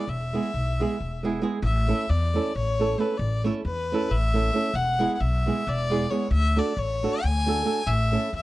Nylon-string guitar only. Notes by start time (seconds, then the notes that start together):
0.33 G#3 B3 E4 G#4
0.80 G#3 B3 E4 G#4
1.23 G#3 B3 E4 G#4
1.42 G#3 B3 E4 G#4
1.88 A3 C#4 E4 A4
2.34 A3 C#4 E4 A4
2.79 A3 C#4 E4 A4
2.98 A3 C#4 E4 A4
3.44 A3 C#4 E4 A4
3.92 A3 C#4 E4 A4
4.34 A3 C#4 E4 A4
4.53 A3 C#4 E4 A4
4.99 G#3 B3 E4 G#4
5.46 G#3 B3 E4 G#4
5.90 G#3 B3 E4 G#4
6.11 G#3 B3 E4 G#4
6.56 A3 D4 F#4 A4
7.03 A3 D4 F#4 A4
7.46 A3 D4 F#4 A4
7.64 A3 D4 F#4 A4
8.12 A3 C#4 E4 A4